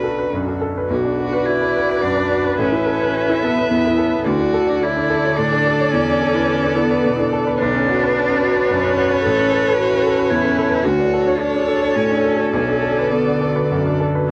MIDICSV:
0, 0, Header, 1, 7, 480
1, 0, Start_track
1, 0, Key_signature, 2, "minor"
1, 0, Tempo, 590551
1, 738, Time_signature, 3, 2, 24, 8
1, 738, Tempo, 559701
1, 4098, Tempo, 547445
1, 9858, Tempo, 575816
1, 12288, End_track
2, 0, Start_track
2, 0, Title_t, "Violin"
2, 0, Program_c, 0, 40
2, 0, Note_on_c, 0, 71, 50
2, 258, Note_off_c, 0, 71, 0
2, 748, Note_on_c, 0, 74, 58
2, 2151, Note_off_c, 0, 74, 0
2, 2177, Note_on_c, 0, 76, 61
2, 3585, Note_off_c, 0, 76, 0
2, 3625, Note_on_c, 0, 74, 71
2, 6485, Note_off_c, 0, 74, 0
2, 6514, Note_on_c, 0, 73, 84
2, 9340, Note_off_c, 0, 73, 0
2, 9381, Note_on_c, 0, 73, 78
2, 10779, Note_off_c, 0, 73, 0
2, 10806, Note_on_c, 0, 74, 54
2, 12056, Note_off_c, 0, 74, 0
2, 12288, End_track
3, 0, Start_track
3, 0, Title_t, "Marimba"
3, 0, Program_c, 1, 12
3, 742, Note_on_c, 1, 71, 58
3, 814, Note_off_c, 1, 71, 0
3, 982, Note_on_c, 1, 74, 41
3, 1054, Note_off_c, 1, 74, 0
3, 1101, Note_on_c, 1, 71, 60
3, 1173, Note_off_c, 1, 71, 0
3, 1218, Note_on_c, 1, 83, 44
3, 1291, Note_off_c, 1, 83, 0
3, 1339, Note_on_c, 1, 78, 38
3, 1412, Note_off_c, 1, 78, 0
3, 1454, Note_on_c, 1, 71, 54
3, 1529, Note_off_c, 1, 71, 0
3, 1580, Note_on_c, 1, 74, 40
3, 1653, Note_off_c, 1, 74, 0
3, 1695, Note_on_c, 1, 78, 43
3, 1769, Note_off_c, 1, 78, 0
3, 1818, Note_on_c, 1, 71, 50
3, 1891, Note_off_c, 1, 71, 0
3, 1943, Note_on_c, 1, 74, 42
3, 2014, Note_off_c, 1, 74, 0
3, 2057, Note_on_c, 1, 83, 44
3, 2130, Note_off_c, 1, 83, 0
3, 2175, Note_on_c, 1, 69, 56
3, 2248, Note_off_c, 1, 69, 0
3, 2415, Note_on_c, 1, 73, 41
3, 2488, Note_off_c, 1, 73, 0
3, 2542, Note_on_c, 1, 69, 62
3, 2613, Note_off_c, 1, 69, 0
3, 2664, Note_on_c, 1, 81, 45
3, 2735, Note_off_c, 1, 81, 0
3, 2784, Note_on_c, 1, 76, 46
3, 2855, Note_off_c, 1, 76, 0
3, 2895, Note_on_c, 1, 69, 65
3, 2969, Note_off_c, 1, 69, 0
3, 3024, Note_on_c, 1, 73, 42
3, 3095, Note_off_c, 1, 73, 0
3, 3140, Note_on_c, 1, 76, 48
3, 3213, Note_off_c, 1, 76, 0
3, 3257, Note_on_c, 1, 69, 56
3, 3330, Note_off_c, 1, 69, 0
3, 3389, Note_on_c, 1, 73, 44
3, 3458, Note_off_c, 1, 73, 0
3, 3501, Note_on_c, 1, 81, 47
3, 3573, Note_off_c, 1, 81, 0
3, 3618, Note_on_c, 1, 62, 73
3, 3691, Note_off_c, 1, 62, 0
3, 3859, Note_on_c, 1, 66, 44
3, 3931, Note_off_c, 1, 66, 0
3, 3976, Note_on_c, 1, 62, 72
3, 4048, Note_off_c, 1, 62, 0
3, 4095, Note_on_c, 1, 73, 49
3, 4168, Note_off_c, 1, 73, 0
3, 4227, Note_on_c, 1, 69, 49
3, 4297, Note_off_c, 1, 69, 0
3, 4340, Note_on_c, 1, 62, 70
3, 4412, Note_off_c, 1, 62, 0
3, 4463, Note_on_c, 1, 66, 47
3, 4534, Note_off_c, 1, 66, 0
3, 4583, Note_on_c, 1, 69, 54
3, 4654, Note_off_c, 1, 69, 0
3, 4703, Note_on_c, 1, 62, 66
3, 4775, Note_off_c, 1, 62, 0
3, 4821, Note_on_c, 1, 66, 52
3, 4893, Note_off_c, 1, 66, 0
3, 4943, Note_on_c, 1, 73, 48
3, 5016, Note_off_c, 1, 73, 0
3, 5058, Note_on_c, 1, 64, 69
3, 5133, Note_off_c, 1, 64, 0
3, 5303, Note_on_c, 1, 69, 54
3, 5377, Note_off_c, 1, 69, 0
3, 5422, Note_on_c, 1, 64, 86
3, 5496, Note_off_c, 1, 64, 0
3, 5548, Note_on_c, 1, 74, 55
3, 5621, Note_off_c, 1, 74, 0
3, 5673, Note_on_c, 1, 71, 50
3, 5744, Note_off_c, 1, 71, 0
3, 5786, Note_on_c, 1, 64, 77
3, 5860, Note_off_c, 1, 64, 0
3, 5914, Note_on_c, 1, 69, 57
3, 5986, Note_off_c, 1, 69, 0
3, 6027, Note_on_c, 1, 71, 61
3, 6102, Note_off_c, 1, 71, 0
3, 6150, Note_on_c, 1, 64, 68
3, 6224, Note_off_c, 1, 64, 0
3, 6273, Note_on_c, 1, 69, 56
3, 6347, Note_off_c, 1, 69, 0
3, 6398, Note_on_c, 1, 74, 58
3, 6470, Note_off_c, 1, 74, 0
3, 6512, Note_on_c, 1, 71, 81
3, 6586, Note_off_c, 1, 71, 0
3, 6756, Note_on_c, 1, 74, 50
3, 6829, Note_off_c, 1, 74, 0
3, 6875, Note_on_c, 1, 71, 93
3, 6948, Note_off_c, 1, 71, 0
3, 6992, Note_on_c, 1, 83, 63
3, 7066, Note_off_c, 1, 83, 0
3, 7115, Note_on_c, 1, 78, 53
3, 7187, Note_off_c, 1, 78, 0
3, 7234, Note_on_c, 1, 71, 86
3, 7307, Note_off_c, 1, 71, 0
3, 7351, Note_on_c, 1, 74, 58
3, 7424, Note_off_c, 1, 74, 0
3, 7468, Note_on_c, 1, 78, 60
3, 7542, Note_off_c, 1, 78, 0
3, 7584, Note_on_c, 1, 71, 76
3, 7659, Note_off_c, 1, 71, 0
3, 7704, Note_on_c, 1, 74, 52
3, 7778, Note_off_c, 1, 74, 0
3, 7824, Note_on_c, 1, 83, 60
3, 7898, Note_off_c, 1, 83, 0
3, 7941, Note_on_c, 1, 69, 81
3, 8016, Note_off_c, 1, 69, 0
3, 8182, Note_on_c, 1, 73, 49
3, 8255, Note_off_c, 1, 73, 0
3, 8306, Note_on_c, 1, 69, 80
3, 8378, Note_off_c, 1, 69, 0
3, 8420, Note_on_c, 1, 81, 56
3, 8494, Note_off_c, 1, 81, 0
3, 8538, Note_on_c, 1, 76, 48
3, 8611, Note_off_c, 1, 76, 0
3, 8653, Note_on_c, 1, 69, 89
3, 8727, Note_off_c, 1, 69, 0
3, 8892, Note_on_c, 1, 76, 57
3, 8966, Note_off_c, 1, 76, 0
3, 9009, Note_on_c, 1, 69, 71
3, 9084, Note_off_c, 1, 69, 0
3, 9131, Note_on_c, 1, 73, 55
3, 9205, Note_off_c, 1, 73, 0
3, 9251, Note_on_c, 1, 81, 53
3, 9324, Note_off_c, 1, 81, 0
3, 9368, Note_on_c, 1, 62, 78
3, 9442, Note_off_c, 1, 62, 0
3, 9610, Note_on_c, 1, 66, 54
3, 9684, Note_off_c, 1, 66, 0
3, 9732, Note_on_c, 1, 62, 80
3, 9807, Note_off_c, 1, 62, 0
3, 9861, Note_on_c, 1, 73, 53
3, 9930, Note_off_c, 1, 73, 0
3, 9972, Note_on_c, 1, 69, 48
3, 10044, Note_off_c, 1, 69, 0
3, 10095, Note_on_c, 1, 62, 75
3, 10165, Note_off_c, 1, 62, 0
3, 10209, Note_on_c, 1, 66, 46
3, 10280, Note_off_c, 1, 66, 0
3, 10333, Note_on_c, 1, 69, 47
3, 10403, Note_off_c, 1, 69, 0
3, 10451, Note_on_c, 1, 62, 59
3, 10522, Note_off_c, 1, 62, 0
3, 10573, Note_on_c, 1, 66, 45
3, 10644, Note_off_c, 1, 66, 0
3, 10696, Note_on_c, 1, 73, 45
3, 10766, Note_off_c, 1, 73, 0
3, 10817, Note_on_c, 1, 71, 63
3, 10888, Note_off_c, 1, 71, 0
3, 11058, Note_on_c, 1, 74, 39
3, 11130, Note_off_c, 1, 74, 0
3, 11179, Note_on_c, 1, 71, 66
3, 11251, Note_off_c, 1, 71, 0
3, 11304, Note_on_c, 1, 81, 44
3, 11375, Note_off_c, 1, 81, 0
3, 11429, Note_on_c, 1, 78, 39
3, 11499, Note_off_c, 1, 78, 0
3, 11548, Note_on_c, 1, 71, 63
3, 11618, Note_off_c, 1, 71, 0
3, 11671, Note_on_c, 1, 74, 38
3, 11740, Note_off_c, 1, 74, 0
3, 11791, Note_on_c, 1, 78, 45
3, 11860, Note_off_c, 1, 78, 0
3, 11909, Note_on_c, 1, 71, 49
3, 11979, Note_off_c, 1, 71, 0
3, 12036, Note_on_c, 1, 74, 44
3, 12104, Note_off_c, 1, 74, 0
3, 12159, Note_on_c, 1, 81, 41
3, 12225, Note_off_c, 1, 81, 0
3, 12288, End_track
4, 0, Start_track
4, 0, Title_t, "Viola"
4, 0, Program_c, 2, 41
4, 739, Note_on_c, 2, 71, 57
4, 3587, Note_off_c, 2, 71, 0
4, 3621, Note_on_c, 2, 69, 66
4, 6483, Note_off_c, 2, 69, 0
4, 6514, Note_on_c, 2, 71, 76
4, 9340, Note_off_c, 2, 71, 0
4, 9383, Note_on_c, 2, 69, 70
4, 12060, Note_off_c, 2, 69, 0
4, 12288, End_track
5, 0, Start_track
5, 0, Title_t, "Ambient pad"
5, 0, Program_c, 3, 92
5, 0, Note_on_c, 3, 62, 45
5, 0, Note_on_c, 3, 66, 47
5, 0, Note_on_c, 3, 69, 54
5, 739, Note_off_c, 3, 62, 0
5, 742, Note_off_c, 3, 66, 0
5, 745, Note_off_c, 3, 69, 0
5, 752, Note_on_c, 3, 66, 49
5, 753, Note_on_c, 3, 71, 57
5, 756, Note_on_c, 3, 62, 52
5, 2153, Note_off_c, 3, 66, 0
5, 2155, Note_off_c, 3, 62, 0
5, 2212, Note_on_c, 3, 64, 51
5, 2217, Note_on_c, 3, 69, 53
5, 3594, Note_off_c, 3, 71, 0
5, 3635, Note_on_c, 3, 74, 51
5, 3637, Note_off_c, 3, 64, 0
5, 3639, Note_on_c, 3, 50, 57
5, 5070, Note_off_c, 3, 74, 0
5, 5077, Note_on_c, 3, 71, 52
5, 6502, Note_on_c, 3, 66, 58
5, 6508, Note_on_c, 3, 73, 56
5, 6527, Note_off_c, 3, 50, 0
5, 6537, Note_off_c, 3, 69, 0
5, 7943, Note_off_c, 3, 66, 0
5, 7952, Note_on_c, 3, 64, 58
5, 9370, Note_on_c, 3, 66, 56
5, 9376, Note_on_c, 3, 69, 65
5, 9377, Note_off_c, 3, 64, 0
5, 9384, Note_off_c, 3, 71, 0
5, 10805, Note_off_c, 3, 73, 0
5, 10817, Note_on_c, 3, 50, 58
5, 12248, Note_off_c, 3, 69, 0
5, 12249, Note_off_c, 3, 66, 0
5, 12251, Note_on_c, 3, 62, 57
5, 12258, Note_on_c, 3, 69, 58
5, 12259, Note_on_c, 3, 66, 57
5, 12264, Note_off_c, 3, 50, 0
5, 12288, Note_off_c, 3, 62, 0
5, 12288, Note_off_c, 3, 66, 0
5, 12288, Note_off_c, 3, 69, 0
5, 12288, End_track
6, 0, Start_track
6, 0, Title_t, "Grand piano"
6, 0, Program_c, 4, 0
6, 0, Control_c, 4, 64, 127
6, 0, Note_on_c, 4, 35, 41
6, 0, Note_on_c, 4, 62, 29
6, 0, Note_on_c, 4, 69, 36
6, 0, Note_on_c, 4, 71, 33
6, 28, Note_off_c, 4, 69, 0
6, 28, Note_on_c, 4, 69, 31
6, 95, Note_off_c, 4, 62, 0
6, 151, Note_off_c, 4, 71, 0
6, 151, Note_on_c, 4, 71, 32
6, 215, Note_off_c, 4, 69, 0
6, 268, Note_on_c, 4, 42, 33
6, 337, Note_off_c, 4, 71, 0
6, 390, Note_on_c, 4, 62, 34
6, 456, Note_off_c, 4, 42, 0
6, 498, Note_on_c, 4, 69, 36
6, 579, Note_off_c, 4, 62, 0
6, 631, Note_on_c, 4, 71, 33
6, 690, Note_off_c, 4, 69, 0
6, 711, Note_off_c, 4, 35, 0
6, 733, Note_on_c, 4, 35, 39
6, 744, Note_off_c, 4, 71, 0
6, 756, Control_c, 4, 64, 0
6, 857, Note_on_c, 4, 62, 42
6, 893, Control_c, 4, 64, 127
6, 988, Note_on_c, 4, 66, 37
6, 1052, Note_off_c, 4, 62, 0
6, 1098, Note_on_c, 4, 71, 39
6, 1177, Note_off_c, 4, 66, 0
6, 1342, Note_on_c, 4, 62, 34
6, 1467, Note_on_c, 4, 66, 39
6, 1485, Note_off_c, 4, 71, 0
6, 1534, Note_off_c, 4, 62, 0
6, 1580, Note_on_c, 4, 71, 37
6, 1657, Note_off_c, 4, 66, 0
6, 1700, Note_on_c, 4, 42, 38
6, 1773, Note_off_c, 4, 71, 0
6, 1828, Note_on_c, 4, 62, 39
6, 1893, Note_off_c, 4, 42, 0
6, 1941, Note_on_c, 4, 66, 40
6, 2016, Note_off_c, 4, 62, 0
6, 2056, Note_on_c, 4, 71, 41
6, 2132, Note_off_c, 4, 66, 0
6, 2143, Note_off_c, 4, 35, 0
6, 2177, Note_on_c, 4, 33, 46
6, 2178, Note_off_c, 4, 71, 0
6, 2196, Control_c, 4, 64, 0
6, 2293, Note_on_c, 4, 64, 41
6, 2360, Control_c, 4, 64, 127
6, 2411, Note_on_c, 4, 69, 39
6, 2487, Note_off_c, 4, 64, 0
6, 2546, Note_on_c, 4, 71, 37
6, 2606, Note_off_c, 4, 69, 0
6, 2782, Note_on_c, 4, 64, 43
6, 2909, Note_on_c, 4, 69, 42
6, 2929, Note_off_c, 4, 71, 0
6, 2974, Note_off_c, 4, 64, 0
6, 3034, Note_on_c, 4, 71, 43
6, 3097, Note_off_c, 4, 69, 0
6, 3137, Note_on_c, 4, 40, 39
6, 3220, Note_off_c, 4, 71, 0
6, 3262, Note_on_c, 4, 64, 44
6, 3331, Note_off_c, 4, 40, 0
6, 3372, Note_on_c, 4, 69, 48
6, 3454, Note_off_c, 4, 64, 0
6, 3485, Note_on_c, 4, 71, 42
6, 3568, Note_off_c, 4, 69, 0
6, 3585, Note_off_c, 4, 33, 0
6, 3611, Note_on_c, 4, 38, 52
6, 3613, Note_off_c, 4, 71, 0
6, 3636, Control_c, 4, 64, 0
6, 3731, Note_on_c, 4, 62, 44
6, 3761, Control_c, 4, 64, 127
6, 3850, Note_on_c, 4, 69, 49
6, 3927, Note_off_c, 4, 62, 0
6, 3963, Note_on_c, 4, 74, 42
6, 4045, Note_off_c, 4, 69, 0
6, 4215, Note_on_c, 4, 62, 44
6, 4336, Note_on_c, 4, 69, 47
6, 4355, Note_off_c, 4, 74, 0
6, 4409, Note_off_c, 4, 62, 0
6, 4470, Note_on_c, 4, 73, 49
6, 4530, Note_off_c, 4, 69, 0
6, 4588, Note_on_c, 4, 45, 48
6, 4657, Note_off_c, 4, 73, 0
6, 4715, Note_on_c, 4, 62, 45
6, 4776, Note_off_c, 4, 45, 0
6, 4838, Note_on_c, 4, 69, 50
6, 4901, Note_off_c, 4, 62, 0
6, 4959, Note_on_c, 4, 73, 51
6, 5023, Note_off_c, 4, 38, 0
6, 5024, Note_off_c, 4, 69, 0
6, 5069, Note_on_c, 4, 40, 57
6, 5072, Note_off_c, 4, 73, 0
6, 5079, Control_c, 4, 64, 0
6, 5199, Note_on_c, 4, 62, 49
6, 5234, Control_c, 4, 64, 127
6, 5319, Note_on_c, 4, 69, 46
6, 5387, Note_off_c, 4, 62, 0
6, 5439, Note_on_c, 4, 71, 45
6, 5507, Note_off_c, 4, 69, 0
6, 5677, Note_on_c, 4, 62, 50
6, 5795, Note_on_c, 4, 69, 47
6, 5821, Note_off_c, 4, 71, 0
6, 5867, Note_off_c, 4, 62, 0
6, 5925, Note_on_c, 4, 71, 52
6, 5987, Note_off_c, 4, 69, 0
6, 6052, Note_on_c, 4, 47, 58
6, 6112, Note_off_c, 4, 71, 0
6, 6170, Note_on_c, 4, 62, 49
6, 6237, Note_off_c, 4, 47, 0
6, 6292, Note_on_c, 4, 69, 59
6, 6357, Note_off_c, 4, 62, 0
6, 6415, Note_on_c, 4, 71, 55
6, 6478, Note_off_c, 4, 69, 0
6, 6486, Note_off_c, 4, 40, 0
6, 6527, Note_off_c, 4, 71, 0
6, 6535, Control_c, 4, 64, 0
6, 6547, Note_on_c, 4, 35, 63
6, 6656, Note_on_c, 4, 61, 56
6, 6671, Control_c, 4, 64, 127
6, 6779, Note_on_c, 4, 66, 56
6, 6839, Note_off_c, 4, 61, 0
6, 6911, Note_on_c, 4, 71, 54
6, 6960, Note_off_c, 4, 66, 0
6, 7133, Note_on_c, 4, 61, 53
6, 7252, Note_on_c, 4, 66, 54
6, 7277, Note_off_c, 4, 71, 0
6, 7316, Note_off_c, 4, 61, 0
6, 7363, Note_on_c, 4, 71, 54
6, 7435, Note_off_c, 4, 66, 0
6, 7499, Note_on_c, 4, 42, 53
6, 7550, Note_off_c, 4, 71, 0
6, 7616, Note_on_c, 4, 61, 52
6, 7678, Note_off_c, 4, 42, 0
6, 7731, Note_on_c, 4, 66, 58
6, 7795, Note_off_c, 4, 61, 0
6, 7851, Note_on_c, 4, 71, 59
6, 7912, Note_off_c, 4, 66, 0
6, 7931, Note_off_c, 4, 35, 0
6, 7960, Note_off_c, 4, 71, 0
6, 7969, Control_c, 4, 64, 0
6, 7983, Note_on_c, 4, 33, 65
6, 8087, Control_c, 4, 64, 127
6, 8102, Note_on_c, 4, 61, 58
6, 8209, Note_on_c, 4, 69, 57
6, 8277, Note_off_c, 4, 61, 0
6, 8345, Note_on_c, 4, 71, 50
6, 8389, Note_off_c, 4, 69, 0
6, 8568, Note_on_c, 4, 61, 46
6, 8692, Note_on_c, 4, 69, 57
6, 8706, Note_off_c, 4, 71, 0
6, 8746, Note_off_c, 4, 61, 0
6, 8801, Note_on_c, 4, 71, 58
6, 8867, Note_off_c, 4, 69, 0
6, 8908, Note_on_c, 4, 40, 51
6, 8981, Note_off_c, 4, 71, 0
6, 9022, Note_on_c, 4, 61, 53
6, 9094, Note_off_c, 4, 40, 0
6, 9151, Note_on_c, 4, 69, 57
6, 9211, Note_off_c, 4, 61, 0
6, 9264, Note_on_c, 4, 71, 55
6, 9336, Note_off_c, 4, 69, 0
6, 9358, Note_off_c, 4, 33, 0
6, 9380, Note_off_c, 4, 71, 0
6, 9386, Note_on_c, 4, 38, 56
6, 9394, Control_c, 4, 64, 0
6, 9507, Note_on_c, 4, 62, 51
6, 9550, Control_c, 4, 64, 127
6, 9629, Note_on_c, 4, 69, 49
6, 9695, Note_off_c, 4, 62, 0
6, 9751, Note_on_c, 4, 73, 49
6, 9817, Note_off_c, 4, 69, 0
6, 9978, Note_on_c, 4, 62, 39
6, 10094, Note_on_c, 4, 69, 43
6, 10123, Note_off_c, 4, 73, 0
6, 10164, Note_off_c, 4, 62, 0
6, 10212, Note_on_c, 4, 73, 45
6, 10282, Note_off_c, 4, 69, 0
6, 10329, Note_on_c, 4, 45, 44
6, 10401, Note_off_c, 4, 73, 0
6, 10448, Note_on_c, 4, 62, 45
6, 10520, Note_off_c, 4, 45, 0
6, 10563, Note_on_c, 4, 69, 44
6, 10640, Note_off_c, 4, 62, 0
6, 10695, Note_on_c, 4, 73, 40
6, 10759, Note_off_c, 4, 69, 0
6, 10781, Note_off_c, 4, 38, 0
6, 10807, Note_on_c, 4, 35, 47
6, 10813, Note_off_c, 4, 73, 0
6, 10826, Control_c, 4, 64, 0
6, 10929, Note_on_c, 4, 62, 40
6, 10960, Control_c, 4, 64, 127
6, 11048, Note_on_c, 4, 69, 42
6, 11126, Note_off_c, 4, 62, 0
6, 11183, Note_on_c, 4, 71, 38
6, 11246, Note_off_c, 4, 69, 0
6, 11425, Note_on_c, 4, 62, 37
6, 11537, Note_on_c, 4, 69, 39
6, 11567, Note_off_c, 4, 71, 0
6, 11615, Note_off_c, 4, 62, 0
6, 11660, Note_on_c, 4, 71, 43
6, 11731, Note_off_c, 4, 69, 0
6, 11785, Note_on_c, 4, 42, 36
6, 11853, Note_off_c, 4, 71, 0
6, 11912, Note_on_c, 4, 62, 41
6, 11976, Note_off_c, 4, 42, 0
6, 12031, Note_on_c, 4, 69, 38
6, 12100, Note_off_c, 4, 62, 0
6, 12155, Note_on_c, 4, 71, 42
6, 12218, Note_off_c, 4, 69, 0
6, 12225, Note_off_c, 4, 35, 0
6, 12267, Note_off_c, 4, 71, 0
6, 12276, Control_c, 4, 64, 0
6, 12288, End_track
7, 0, Start_track
7, 0, Title_t, "Cello"
7, 0, Program_c, 5, 42
7, 0, Note_on_c, 5, 66, 51
7, 476, Note_off_c, 5, 66, 0
7, 732, Note_on_c, 5, 66, 66
7, 1208, Note_on_c, 5, 64, 74
7, 1221, Note_off_c, 5, 66, 0
7, 1692, Note_on_c, 5, 62, 65
7, 1705, Note_off_c, 5, 64, 0
7, 2175, Note_off_c, 5, 62, 0
7, 2179, Note_on_c, 5, 61, 67
7, 2894, Note_on_c, 5, 59, 67
7, 2907, Note_off_c, 5, 61, 0
7, 3138, Note_off_c, 5, 59, 0
7, 3147, Note_on_c, 5, 59, 68
7, 3620, Note_on_c, 5, 66, 80
7, 3633, Note_off_c, 5, 59, 0
7, 4102, Note_on_c, 5, 64, 81
7, 4116, Note_off_c, 5, 66, 0
7, 4585, Note_on_c, 5, 62, 80
7, 4599, Note_off_c, 5, 64, 0
7, 5059, Note_on_c, 5, 61, 82
7, 5073, Note_off_c, 5, 62, 0
7, 5797, Note_on_c, 5, 59, 80
7, 5810, Note_off_c, 5, 61, 0
7, 6036, Note_off_c, 5, 59, 0
7, 6519, Note_on_c, 5, 62, 94
7, 7916, Note_off_c, 5, 62, 0
7, 7942, Note_on_c, 5, 69, 97
7, 8418, Note_on_c, 5, 66, 95
7, 8431, Note_off_c, 5, 69, 0
7, 8896, Note_on_c, 5, 64, 84
7, 8909, Note_off_c, 5, 66, 0
7, 9372, Note_on_c, 5, 66, 96
7, 9385, Note_off_c, 5, 64, 0
7, 9857, Note_on_c, 5, 62, 80
7, 9870, Note_off_c, 5, 66, 0
7, 10320, Note_on_c, 5, 61, 74
7, 10333, Note_off_c, 5, 62, 0
7, 10801, Note_off_c, 5, 61, 0
7, 10806, Note_on_c, 5, 61, 68
7, 11282, Note_on_c, 5, 59, 56
7, 11294, Note_off_c, 5, 61, 0
7, 11772, Note_off_c, 5, 59, 0
7, 12288, End_track
0, 0, End_of_file